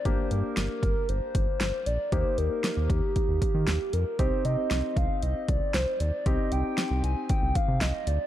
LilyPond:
<<
  \new Staff \with { instrumentName = "Soft synth lead" } { \time 4/4 \key c \minor \tempo 4 = 116 c''8 bes'4 bes'8 c''4 c''8 d''8 | c''8 bes'4 g'8 g'4. bes'8 | c''8 ees''4 f''8 ees''8 d''8 c''8 d''8 | ees''8 g''4 aes''8 g''8 f''8 ees''8 d''8 | }
  \new Staff \with { instrumentName = "Grand piano" } { \time 4/4 \key c \minor <bes d' g'>1 | <bes ees' g'>1 | <c' ees' g'>1 | <c' ees' g'>1 | }
  \new Staff \with { instrumentName = "Analog synth bass" } { \clef bass \time 4/4 \key c \minor g,,16 r16 g,16 r16 g,,16 r16 g,,16 r16 g,,16 r16 g,,16 r16 g,,16 r16 bes,,16 r16 | ees,16 r16 ees,16 r8 ees,16 ees,16 r8 ees,16 r16 ees16 ees,16 r16 f,16 r16 | c,16 r16 c16 r16 c,16 r16 c,16 r16 c,16 r16 c,16 r16 c,16 r16 ees,16 r16 | c,16 r16 c,16 r8 c,16 c,16 r8 c,16 r16 c16 c,16 r16 d,16 r16 | }
  \new DrumStaff \with { instrumentName = "Drums" } \drummode { \time 4/4 <hh bd>8 hh8 <hh sn>8 <hh bd>8 hh8 <hh bd>8 <hh sn>8 hh8 | <hh bd>8 hh8 <hh sn>8 <hh bd>8 <hh bd>8 <hh bd>8 <hh sn>8 hh8 | <hh bd>8 hh8 <hh sn>8 <hh bd>8 hh8 <hh bd>8 <hh sn>8 hh8 | <hh bd>8 hh8 <hh sn>8 hh8 <hh bd>8 <hh bd>8 <hh sn>8 hh8 | }
>>